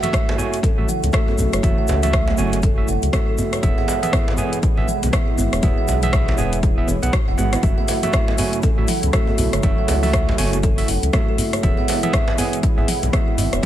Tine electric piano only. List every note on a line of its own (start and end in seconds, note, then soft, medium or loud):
0.03 0.36 A3 loud
0.03 0.36 F#4 medium
0.03 0.36 E5 loud
0.38 0.58 A3 medium
0.38 0.58 F#4 medium
0.38 0.58 G#5 loud
0.78 0.87 A3 loud
0.78 0.87 F#4 medium
0.78 0.87 E5 loud
1.13 1.61 A3 medium
1.13 1.61 F#4 medium
1.13 1.61 E5 loud
1.63 2.00 A3 medium
1.63 2.00 F#4 medium
1.63 2.00 E5 loud
2.03 2.36 A3 loud
2.03 2.36 F#4 medium
2.03 2.36 E5 loud
2.38 2.58 A3 medium
2.38 2.58 F#4 medium
2.38 2.58 G#5 loud
2.78 2.87 A3 loud
2.78 2.87 F#4 medium
2.78 2.87 E5 loud
3.13 3.61 A3 medium
3.13 3.61 F#4 medium
3.13 3.61 E5 loud
3.63 3.99 B3 medium
3.63 3.99 G#4 medium
3.63 3.99 E5 loud
4.03 4.36 B3 loud
4.03 4.36 G#4 medium
4.03 4.36 E5 loud
4.38 4.58 B3 medium
4.38 4.58 G#4 medium
4.38 4.58 G#5 loud
4.78 4.87 B3 loud
4.78 4.87 G#4 medium
4.78 4.87 E5 loud
5.13 5.61 B3 medium
5.13 5.61 G#4 medium
5.13 5.61 E5 loud
5.63 5.99 B3 medium
5.63 5.99 G#4 medium
5.63 5.99 E5 loud
6.03 6.36 B3 loud
6.03 6.36 G#4 medium
6.03 6.36 E5 loud
6.38 6.58 B3 medium
6.38 6.58 G#4 medium
6.38 6.58 G#5 loud
6.78 6.87 B3 loud
6.78 6.87 G#4 medium
6.78 6.87 E5 loud
7.03 7.12 B3 loud
7.03 7.12 G#4 medium
7.03 7.12 F#5 loud
7.38 7.61 B3 medium
7.38 7.61 G#4 medium
7.38 7.61 F#5 loud
7.63 7.99 A3 medium
7.63 7.99 F#4 medium
7.63 7.99 E5 medium
8.03 8.36 A3 loud
8.03 8.36 F#4 medium
8.03 8.36 E5 loud
8.38 8.58 A3 medium
8.38 8.58 F#4 medium
8.38 8.58 G#5 loud
8.78 8.87 A3 medium
8.78 8.88 F#4 medium
8.78 8.87 E5 loud
9.13 9.61 A3 medium
9.13 9.61 F#4 medium
9.13 9.61 E5 loud
9.63 9.99 A3 medium
9.63 9.99 F#4 medium
9.63 9.99 E5 medium
10.03 10.36 A3 loud
10.03 10.36 F#4 medium
10.03 10.36 E5 loud
10.38 10.58 A3 medium
10.38 10.58 F#4 medium
10.38 10.58 G#5 loud
10.78 10.87 A3 loud
10.78 10.87 F#4 medium
10.78 10.87 E5 loud
11.13 11.61 A3 loud
11.13 11.61 F#4 medium
11.13 11.61 E5 loud
11.63 11.99 B3 medium
11.63 12.00 G#4 medium
11.63 11.99 E5 loud
12.03 12.36 B3 loud
12.03 12.36 G#4 medium
12.03 12.36 E5 loud
12.38 12.58 B3 medium
12.38 12.58 G#4 medium
12.38 12.58 G#5 loud
12.78 12.87 B3 loud
12.78 12.87 G#4 medium
12.78 12.87 E5 loud
13.13 13.61 B3 medium
13.13 13.61 G#4 medium
13.13 13.61 E5 loud